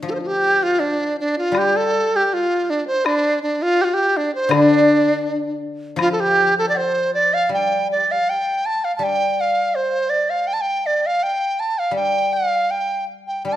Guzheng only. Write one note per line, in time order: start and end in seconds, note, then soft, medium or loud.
0.00 0.77 D3 medium
0.00 2.29 F3 medium
0.00 0.23 A3 medium
1.52 3.77 G3 medium
4.49 6.73 D3 medium
5.96 8.26 F3 medium
7.49 8.98 G3 soft
8.99 11.18 G3 medium
11.91 13.44 G3 soft
13.45 13.56 G3 soft